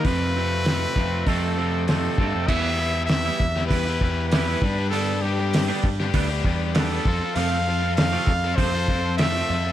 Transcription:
<<
  \new Staff \with { instrumentName = "String machine" } { \time 4/4 \key f \lydian \tempo 4 = 98 << { r1 | <g' b''>1~ | <g' b''>2.~ <g' b''>8 <a' c'''>8~ | <a' c'''>1 | } \\ { r1 | e''2.~ e''8 d''8~ | d''2.~ d''8 f'8~ | f'1 | } >> }
  \new Staff \with { instrumentName = "Trumpet" } { \time 4/4 \key f \lydian b'2 a'4 a'4 | e''4 e''4 b'4 b'4 | a'8 g'4 r4. a'4 | f''4 f''4 c''4 e''4 | }
  \new Staff \with { instrumentName = "Overdriven electric guitar" } { \time 4/4 \key f \lydian <f, c f a c'>8 <f, c f a c'>8 <f, c f a c'>8 <f, c f a c'>8 <f, c f a c'>8 <f, c f a c'>8 <f, c f a c'>8 <f, c f a c'>8 | <e b e' g'>8 <e b e' g'>16 <e b e' g'>8 <b e' g'>8 <b e' g'>8 <b e' g'>16 <e b e' g'>8 <e b e' g'>16 <b e' g'>16 <g b d' g'>16 <b d' g'>16 | <g b d' g'>8 <g b d' g'>16 <g b d' g'>8 <b d' g'>8 <b d' g'>8 <b d' g'>16 <g b d' g'>8 <g b d' g'>16 <b d' g'>16 <f c' f' a'>16 <c' f' a'>16 | <f c' f' a'>8 <f c' f' a'>16 <f c' f' a'>8 <c' f' a'>8 <c' f' a'>8 <c' f' a'>16 <f c' f' a'>8 <f c' f' a'>16 <c' f' a'>16 <f c' f' a'>16 <c' f' a'>16 | }
  \new Staff \with { instrumentName = "Clean electric guitar" } { \clef bass \time 4/4 \key f \lydian <f, c f a c'>8 <f, c f a c'>8 <f, c f a c'>8 <f, c f a c'>8 <f, c f a c'>8 <f, c f a c'>8 <f, c f a c'>8 <f, c f a c'>8 | <e g b e'>16 r4 <e g b e'>16 r8 <e g b e'>16 r8. <e g b e'>16 <e g b e'>16 r8 | <d g b d'>16 r4 <d g b d'>16 r8 <d g b d'>16 r8. <d g b d'>16 <d g b d'>16 r8 | <c f a c'>16 r4 <c f a c'>16 r8 <c f a c'>16 r8. <c f a c'>16 <c f a c'>16 r8 | }
  \new Staff \with { instrumentName = "Picked electric bass" } { \clef bass \time 4/4 \key f \lydian f,4. f,8 f,4. g,16 f,16 | e,4. e,8 e,8 e,4 g,8~ | g,4. g,8 d,8 e,4 f,16 r16 | f,4. f,8 f,8 f,4 f,8 | }
  \new DrumStaff \with { instrumentName = "Drums" } \drummode { \time 4/4 <hho bd>4 <hho sn>8 bd8 <hho bd>4 <hho sn>8 bd8 | <cymc bd>4 <hho sn>8 bd16 sn16 <hho bd>8 bd8 <hho sn>8 bd8 | hho4 <hho sn>8 bd16 sn16 <hho bd>8 bd8 <hho sn>8 bd8 | hho4 <hho sn>8 bd8 <hho bd>8 bd8 <hho sn>4 | }
>>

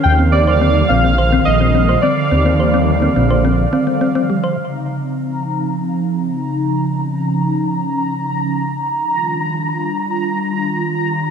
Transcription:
<<
  \new Staff \with { instrumentName = "Synth texture" } { \time 4/4 \key des \major \tempo 4 = 106 f''1~ | f''1 | bes''1~ | bes''1~ |
bes''1 | }
  \new Staff \with { instrumentName = "Synth keys" } { \time 4/4 \key des \major g''8 d''4 f''4 ees''4 d''8~ | d''2.~ d''8 r8 | r1 | r1 |
r1 | }
  \new Staff \with { instrumentName = "Synth arpeggio sound" } { \time 4/4 \key des \major r16 c'16 c'16 c''16 c'16 r16 c'16 c'16 c''16 c'16 r16 c'16 c'16 c''16 c'16 r16 | c'16 c'16 c''16 c'16 r16 c'16 c'16 c''16 c'16 r16 c'16 c'16 c'16 c'16 g16 c''16 | r1 | r1 |
r1 | }
  \new Staff \with { instrumentName = "Analog synth pad" } { \clef bass \time 4/4 \key des \major << { <d ees f>1~ | <d ees f>1 | <des f ees'>1~ | <des f ees'>1 |
<ees g f'>1 | } \\ { g1~ | g1 | c'1 | des'1 |
d'1 | } >> }
  \new Staff \with { instrumentName = "Detuned saw bass" } { \clef bass \time 4/4 \key des \major ees,4. bes,,4 bes,,4 r8 | ees,4. bes,,4 r4. | r1 | r1 |
r1 | }
>>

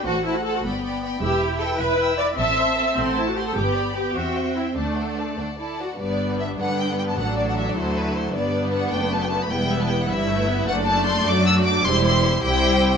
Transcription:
<<
  \new Staff \with { instrumentName = "Violin section" } { \time 6/8 \key g \major \tempo 4. = 102 a''8 a''8 a''8 b''8 b''8 b''8 | e'''8 b''8 e'''8 b''8 e'''8 b''8 | c'''8 a''8 c'''8 c'''8 a''8 c'''8 | d'''8 b''8 d'''8 e''8 g''8 e''8 |
a''8 fis''8 a''8 fis''8 a''8 fis''8 | d''4 e''8 fis''8 g''16 fis''16 g''16 a''16 | fis''8 d''16 fis''16 e''16 d''16 c''8 b'8 c''8 | d''4 fis''8 g''8 a''16 g''16 a''16 b''16 |
g''8 e''16 a''16 g''16 fis''16 e''4. | fis''8 a''8 c'''8 d'''8 e'''8 d'''8 | c'''8 c'''4 g''4. | }
  \new Staff \with { instrumentName = "Violin section" } { \time 6/8 \key g \major << { <c'' fis''>8 <c'' fis''>8 <c'' fis''>8 <d'' g''>8 <d'' g''>8 <d'' g''>8 | <b' g''>8 e''8 <b' g''>8 e''8 <b' g''>8 e''8 | <a' a''>8 <c'' c'''>8 <a' a''>8 <a' fis''>8 <c'' a''>8 <a' fis''>8 | <b' g''>8 <d'' b''>8 <b' g''>8 <e'' g''>8 <c'' e''>8 <e'' g''>8 |
<a' d''>8 <a' d''>8 <a' d''>8 <a' d''>8 <a' d''>8 <a' d''>8 | b'4. b'4. | a'2. | b'2. |
b'4. b'4. | d''2. | c''4. c''4. | } \\ { r2. | r2. | r2. | r2. |
r2. | d'2. | d'4. e'4. | d'2. |
e'2. | a'4. fis'4. | g'4. g'4. | } >> }
  \new Staff \with { instrumentName = "Viola section" } { \time 6/8 \key g \major << { fis'8 e'16 fis'16 a'16 fis'16 r4. | g'4 a'8 b'4 d''8 | e''4. c'8 e'16 fis'16 g'16 a'16 | g'4 g'8 fis'4 e'8 |
a4. r4. | b4. b4. | d'4. a4. | b2. |
b4. e'4. | d'4. d'4. | e'4. e'4. | } \\ { r2. | r2. | r2. | r2. |
r2. | g4. d4. | fis2. | g4. a4. |
g4. g8 a8 b8 | a2. | g4. g4. | } >> }
  \new Staff \with { instrumentName = "Cello section" } { \clef bass \time 6/8 \key g \major a4. b4. | e'2. | c'4. a4. | b4. c'4. |
d'4. d'8 e'8 fis'8 | g,4. g4. | a,4. d4. | g,4. fis,4. |
e,4. g,4. | fis,4. fis4. | e,4. c,4. | }
  \new Staff \with { instrumentName = "Double bass section" } { \clef bass \time 6/8 \key g \major a,,4. g,,4. | e,,4. e,,4. | a,,4. a,,4. | g,,4. e,4. |
d,4. d,4. | g,,4. g,4. | a,,4. d,4. | g,,4. fis,,4. |
e,,4. g,,4. | fis,,4. fis,4. | e,,4. c,4. | }
>>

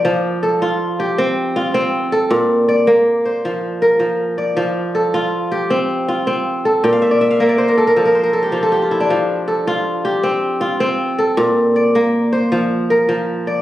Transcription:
<<
  \new Staff \with { instrumentName = "Kora" } { \time 12/8 \key f \major \tempo 4. = 106 << { r1. | r1. | r1. | g''16 f''16 e''16 d''16 e''16 f''16 e''16 d''16 c''16 bes'16 a'16 bes'16 a'16 bes'16 c''16 bes'16 a'16 g'16 f'16 a'16 g'16 f'16 e'16 d'16~ |
d'16 r1 r4. r16 | r1. | } \\ { d''8 r8 a'4. g'4. f'4. a'8~ | a'8 r8 d''4. c''4. bes'4. d''8~ | d''8 r8 a'4. g'4. f'4. a'8~ | a'8 r1 r4. |
r4 a'4. g'4. f'4. a'8~ | a'8 r8 d''4. c''4. bes'4. d''8 | } >> }
  \new Staff \with { instrumentName = "Kora" } { \clef bass \time 12/8 \key f \major f4 r8 f'4 r8 c'4 r8 c'4 r8 | bes,4 r8 bes4 r8 f4 r8 f4 r8 | f4 r8 f'4 r8 c'4 r8 c'4 r8 | bes,4 r8 bes4 r8 f4 r8 f4 r8 |
f4 r8 f'4 r8 c'4 r8 c'4 r8 | bes,4 r8 bes4 r8 f4 r8 f4 r8 | }
>>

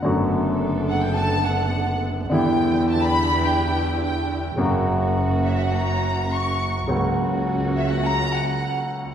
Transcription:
<<
  \new Staff \with { instrumentName = "Violin section" } { \time 4/4 \key fis \phrygian \tempo 4 = 105 r4. fis''16 g''16 a''8 fis''4 r8 | g''4 a''16 b''8. g''4 g''8. r16 | r4. e''16 fis''16 ais''4 cis'''8. r16 | r4. e''16 fis''16 ais''8 fis''4 r8 | }
  \new Staff \with { instrumentName = "String section" } { \time 4/4 \key fis \phrygian <b d' a'>1 | <d' e' g'>1 | <ais cis' fis'>1 | <ais cis' fis'>1 | }
  \new Staff \with { instrumentName = "Grand piano" } { \clef bass \time 4/4 \key fis \phrygian <fis, d fis a b fis'>1 | <e, d e g b e'>1 | <fis, cis fis ais fis'>1 | <cis, cis fis ais fis'>1 | }
  \new Staff \with { instrumentName = "Double bass" } { \clef bass \time 4/4 \key fis \phrygian fis,,1 | e,1 | fis,,1 | cis,1 | }
>>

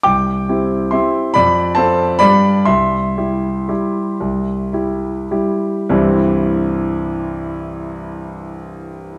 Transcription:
\new Staff \with { instrumentName = "Grand piano" } { \time 3/4 \key c \major \tempo 4 = 116 << { <g'' d'''>2 <e'' c'''>4 | <d'' b''>4 <c'' a''>4 <d'' b''>4 | <e'' c'''>2.~ | <e'' c'''>2~ <e'' c'''>8 r8 |
<c, g, e g c' e'>2.~ | <c, g, e g c' e'>2. | } \\ { c,4 <c' e' g'>4 <c' e' g'>4 | f,4 <c' f' a'>4 <g, g d' g'>4 | c,4 <g e' g'>4 <g e' g'>4 | c,4 <g e' g'>4 <g e' g'>4 |
r2. | r2. | } >> }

